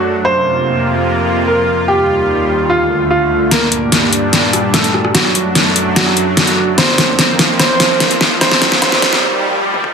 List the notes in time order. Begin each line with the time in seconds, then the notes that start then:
Already playing: F#2 F#3 A3 D4 F#4
0.25 F2 C3 A#3 F4 C5
1.47 A#4
1.88 D#2 D#3 G3 G4
2.70 D2 D3 A3 F4
3.11 F4
3.51 G2 A#2 G3 A#3 D4 A#4, snare, closed hi-hat, riser
3.72 closed hi-hat
3.92 snare, closed hi-hat
4.13 closed hi-hat
4.33 snare, closed hi-hat
4.53 cross-stick, closed hi-hat
4.74 A3 A4, snare, closed hi-hat
4.84 closed hi-hat
4.94 cross-stick
5.05 cross-stick
5.14 F#2 F#3 A3 D4 F#4, snare, closed hi-hat
5.25 cross-stick
5.35 closed hi-hat
5.55 snare, closed hi-hat
5.76 closed hi-hat
5.96 F#3 F#4, snare, closed hi-hat
6.07 cross-stick
6.17 closed hi-hat
6.37 F#3 F#4, snare, closed hi-hat
6.47 closed hi-hat
6.78 F2 F3 A#3 C4 C5, snare, closed hi-hat
6.98 snare, closed hi-hat
7.19 snare, closed hi-hat
7.39 snare, closed hi-hat
7.59 C4 C5, snare, closed hi-hat
7.80 snare, closed hi-hat
8.00 snare, closed hi-hat
8.11 closed hi-hat
8.21 snare
8.41 D#2 D#3 G3 C4 C5, snare, closed hi-hat
8.52 snare
8.62 snare, closed hi-hat
8.72 snare
8.82 C4 C5, snare, closed hi-hat
8.92 snare
9.02 snare, closed hi-hat
9.13 snare
9.23 swell
9.74 high tom
9.84 mid tom